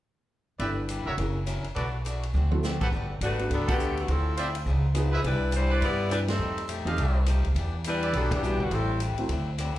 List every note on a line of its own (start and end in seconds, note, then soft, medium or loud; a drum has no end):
0.59 1.03 G1 medium
0.59 0.79 G3 soft
0.59 1.03 B3 soft
0.59 0.80 D4 soft
0.59 1.04 D4 soft
0.59 1.04 E4 soft
0.59 0.80 E4 soft
0.59 0.72 G4 medium
0.59 1.04 A4 soft
0.59 0.72 B4 medium
0.59 0.81 B4 soft
0.59 0.72 D5 medium
0.59 0.72 E5 medium
0.59 kick soft
0.59 ride soft
0.89 1.08 G3 medium
0.89 1.09 D4 medium
0.89 1.09 E4 medium
0.89 1.09 B4 medium
0.89 hi-hat pedal soft
0.89 ride medium
1.06 1.17 F1 medium
1.06 1.14 F#4 medium
1.06 1.14 A#4 medium
1.06 1.14 C#5 medium
1.06 1.14 E5 medium
1.18 1.61 F#1 medium
1.18 1.37 F#3 soft
1.18 1.34 A#3 soft
1.18 1.34 C#4 soft
1.18 1.37 C#4 soft
1.18 1.35 E4 soft
1.18 1.38 E4 soft
1.18 1.35 G#4 soft
1.18 1.39 A#4 medium
1.18 kick soft
1.18 ride soft
1.46 1.66 F#3 medium
1.46 1.66 C#4 medium
1.46 1.66 E4 medium
1.46 1.67 A#4 medium
1.46 cross-stick soft
1.46 hi-hat pedal soft
1.46 ride soft
1.64 muted upright bass stroke soft
1.64 ride soft
1.75 2.31 B1 medium
1.75 1.94 B2 soft
1.75 1.95 A3 soft
1.75 1.95 D4 soft
1.75 1.88 F#4 medium
1.75 1.96 F#4 medium
1.75 1.88 A4 medium
1.75 1.88 B4 medium
1.75 1.88 D5 medium
1.75 kick soft
1.75 ride soft
2.05 2.24 B2 medium
2.05 2.24 A3 medium
2.05 2.24 D4 medium
2.05 2.25 F#4 medium
2.05 hi-hat pedal soft
2.05 ride medium
2.23 ride soft
2.34 2.77 D2 medium
2.34 2.53 D3 soft
2.34 2.53 A3 soft
2.34 2.54 C4 medium
2.34 2.54 F#4 soft
2.34 high tom soft
2.51 2.61 C4 soft
2.51 2.62 E4 soft
2.51 2.62 F#4 soft
2.51 2.63 A4 soft
2.51 high tom medium
2.63 2.82 D3 medium
2.63 2.82 A3 medium
2.63 2.83 C4 medium
2.63 2.83 F#4 medium
2.63 snare soft
2.63 hi-hat pedal soft
2.81 2.91 A1 medium
2.81 2.88 G4 medium
2.81 2.88 A4 medium
2.81 2.88 B4 medium
2.81 2.88 F#5 medium
2.81 kick medium
2.81 crash medium
2.92 3.19 G1 medium
2.92 3.11 G3 soft
2.92 3.12 B3 soft
2.92 3.12 F#4 soft
2.92 kick soft
2.96 3.13 A4 soft
3.21 3.48 G#1 medium
3.21 3.40 G3 medium
3.21 3.49 A3 medium
3.21 3.41 B3 medium
3.21 3.49 D4 medium
3.21 3.49 F#4 medium
3.21 3.41 F#4 medium
3.21 3.42 A4 medium
3.21 3.49 B4 medium
3.21 hi-hat pedal medium
3.21 ride medium
3.39 3.49 B3 soft
3.39 3.49 D4 soft
3.39 3.49 F#4 soft
3.39 3.50 A4 medium
3.39 ride soft
3.50 4.05 D2 medium
3.50 3.68 F#3 medium
3.50 3.69 G3 soft
3.50 3.70 B3 soft
3.50 3.68 B3 medium
3.50 3.68 D4 medium
3.50 3.70 F#4 soft
3.50 3.68 A4 medium
3.50 3.71 A4 soft
3.50 kick soft
3.50 ride medium
3.67 3.96 D3 medium
3.67 3.96 A3 medium
3.67 3.77 B3 soft
3.67 3.96 B3 medium
3.67 3.78 D4 soft
3.67 3.78 F#4 soft
3.67 3.75 G4 medium
3.67 3.96 G4 medium
3.67 3.75 A4 medium
3.67 3.79 A4 medium
3.67 3.75 B4 medium
3.67 3.75 F#5 medium
3.67 kick medium
3.67 ride medium
3.79 3.98 G3 soft
3.79 3.98 B3 medium
3.79 3.99 F#4 medium
3.79 3.99 A4 medium
3.79 hi-hat pedal medium
3.97 4.09 D3 medium
3.97 4.09 A3 medium
3.97 4.09 B3 medium
3.97 4.09 F#4 medium
3.97 ride soft
4.08 4.63 D2 medium
4.08 4.27 D3 soft
4.08 4.27 F3 soft
4.08 4.37 F3 medium
4.08 4.38 C4 medium
4.08 4.28 C4 soft
4.08 4.37 E4 medium
4.08 4.28 E4 soft
4.08 4.37 A4 medium
4.08 kick soft
4.08 ride soft
4.37 4.56 D3 soft
4.37 4.56 F3 soft
4.37 4.57 C4 medium
4.37 4.57 E4 medium
4.37 4.49 F4 medium
4.37 4.49 C5 medium
4.37 4.49 D5 medium
4.37 4.49 E5 medium
4.37 hi-hat pedal medium
4.37 ride medium
4.55 ride medium
4.66 5.21 C#2 medium
4.66 4.85 C#3 medium
4.66 4.86 F3 soft
4.66 4.86 B3 medium
4.66 kick soft
4.70 4.87 D#4 medium
4.94 5.14 C#3 medium
4.94 5.14 F3 medium
4.94 5.10 B3 medium
4.94 5.15 B3 medium
4.94 5.11 D#4 soft
4.94 5.15 D#4 medium
4.94 5.11 F4 soft
4.94 5.11 G#4 medium
4.94 cross-stick medium
4.94 hi-hat pedal medium
4.94 ride medium
5.12 5.25 F3 medium
5.12 5.25 B3 medium
5.12 5.25 D#4 medium
5.12 5.20 E4 medium
5.12 5.24 G#4 medium
5.12 5.20 B4 medium
5.12 5.20 C5 medium
5.12 5.20 E5 medium
5.23 5.79 C2 medium
5.23 5.42 C3 soft
5.23 5.43 E3 soft
5.23 5.51 G3 medium
5.23 5.43 B3 soft
5.23 5.52 D4 medium
5.23 5.44 D4 soft
5.23 5.52 E4 medium
5.23 5.51 B4 medium
5.23 kick soft
5.23 ride soft
5.51 5.71 C3 medium
5.51 5.71 E3 medium
5.51 5.83 G3 medium
5.51 5.72 B3 medium
5.51 5.72 D4 medium
5.51 5.83 D4 medium
5.51 5.82 E4 medium
5.51 5.83 C5 medium
5.51 hi-hat pedal medium
5.51 ride medium
5.70 6.08 E4 medium
5.70 6.08 B4 medium
5.70 6.08 C5 medium
5.70 6.08 D5 medium
5.80 6.37 G2 medium
5.80 6.00 C3 soft
5.80 6.01 E3 soft
5.80 6.09 B3 medium
5.80 6.01 B3 soft
5.80 6.09 E4 medium
5.80 6.09 G4 medium
5.80 6.09 D5 loud
5.80 kick soft
5.80 ride medium
5.84 6.02 D4 soft
6.10 6.29 C3 medium
6.10 6.30 E3 medium
6.10 6.19 G3 medium
6.10 6.27 B3 medium
6.10 6.30 B3 medium
6.10 6.27 D4 soft
6.10 6.19 D4 medium
6.10 6.30 D4 medium
6.10 6.19 E4 medium
6.10 6.27 E4 medium
6.10 6.28 G4 medium
6.10 6.20 B4 medium
6.10 cross-stick soft
6.10 hi-hat pedal medium
6.10 ride medium
6.28 6.66 G3 medium
6.28 6.66 C4 medium
6.28 6.67 D#4 medium
6.28 6.66 A4 medium
6.28 snare medium
6.28 ride medium
6.39 6.83 F2 medium
6.39 6.58 F3 soft
6.39 6.59 A3 soft
6.39 6.59 D#4 soft
6.39 6.60 G4 soft
6.58 ride soft
6.68 6.87 F3 medium
6.68 6.88 A3 medium
6.68 6.88 D#4 medium
6.68 6.88 G4 medium
6.68 hi-hat pedal medium
6.68 ride medium
6.85 6.96 E2 medium
6.85 6.96 A3 soft
6.85 6.96 C4 soft
6.85 6.96 D#4 soft
6.85 7.24 G4 medium
6.85 6.97 G4 medium
6.85 7.24 A4 medium
6.85 7.24 D#5 medium
6.85 7.24 F5 medium
6.85 ride soft
6.97 7.41 C2 medium
6.97 7.16 F3 soft
6.97 7.17 A3 medium
6.97 7.17 D#4 medium
6.97 kick soft
6.97 ride medium
7.01 7.18 G4 medium
7.26 7.45 F3 medium
7.26 7.46 A3 medium
7.26 7.46 D#4 medium
7.26 7.47 G4 medium
7.26 cross-stick medium
7.26 hi-hat pedal soft
7.26 ride medium
7.43 7.54 D2 medium
7.43 ride soft
7.54 8.10 E2 medium
7.54 7.74 E3 soft
7.54 7.75 B3 soft
7.54 7.75 D4 soft
7.54 7.76 G4 medium
7.54 kick soft
7.54 ride medium
7.84 8.04 E3 soft
7.84 8.13 G3 medium
7.84 8.04 B3 medium
7.84 8.04 D4 medium
7.84 8.13 D4 medium
7.84 8.13 E4 medium
7.84 8.05 G4 medium
7.84 8.13 B4 medium
7.84 hi-hat pedal medium
7.84 ride medium
8.02 8.40 G4 medium
8.02 8.40 B4 medium
8.02 8.40 D5 medium
8.02 8.40 E5 medium
8.02 ride soft
8.13 8.68 B1 medium
8.13 8.32 E3 soft
8.13 8.30 F#3 medium
8.13 8.31 B3 medium
8.13 8.33 B3 soft
8.13 8.31 D4 medium
8.13 8.34 D4 soft
8.13 8.30 A4 medium
8.13 kick soft
8.13 ride medium
8.18 8.34 G4 soft
8.31 8.61 E3 medium
8.31 8.60 B3 medium
8.31 8.61 D4 medium
8.31 8.61 G4 medium
8.31 kick medium
8.31 ride medium
8.42 8.62 E3 soft
8.42 8.58 G3 soft
8.42 8.59 B3 soft
8.42 8.62 B3 soft
8.42 8.59 D4 soft
8.42 8.62 D4 medium
8.42 8.59 F#4 medium
8.42 8.63 G4 medium
8.42 hi-hat pedal soft
8.60 8.72 D3 medium
8.60 8.72 G3 medium
8.60 8.72 B3 medium
8.60 8.72 F#4 medium
8.60 kick soft
8.71 9.15 A1 medium
8.71 9.01 G3 medium
8.71 8.90 A3 soft
8.71 9.01 C4 medium
8.71 8.91 C4 soft
8.71 9.01 E4 medium
8.71 8.91 G4 soft
8.71 9.01 A4 medium
8.71 kick soft
8.71 ride soft
8.75 8.92 B4 soft
9.00 9.20 A3 medium
9.00 9.20 C4 medium
9.00 9.20 G4 medium
9.00 9.21 B4 medium
9.00 hi-hat pedal medium
9.00 ride medium
9.17 9.28 F#3 medium
9.17 9.28 A3 soft
9.17 9.29 C4 soft
9.17 9.29 E4 medium
9.17 muted upright bass stroke soft
9.17 ride soft
9.29 9.72 D2 medium
9.29 9.48 D3 soft
9.29 9.49 F#3 medium
9.29 9.49 C4 medium
9.29 9.50 E4 medium
9.29 kick soft
9.29 ride soft
9.58 9.77 D3 medium
9.58 9.77 F#3 medium
9.58 9.78 C4 medium
9.58 9.78 E4 medium
9.58 cross-stick medium
9.58 hi-hat pedal soft
9.58 ride medium
9.76 muted upright bass stroke soft